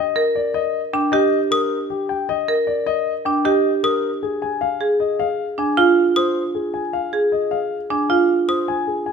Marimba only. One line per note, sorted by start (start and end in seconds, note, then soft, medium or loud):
0.16 0.41 A#4 medium
0.94 1.19 D4 medium
1.13 1.38 G4 medium
2.48 2.74 A#4 medium
3.26 3.51 D4 medium
3.45 3.70 G4 medium
4.81 5.06 G#4 medium
5.58 5.83 D4 medium
5.77 6.03 F4 medium
7.13 7.38 G#4 medium
7.90 8.16 D4 soft
8.10 8.35 F4 medium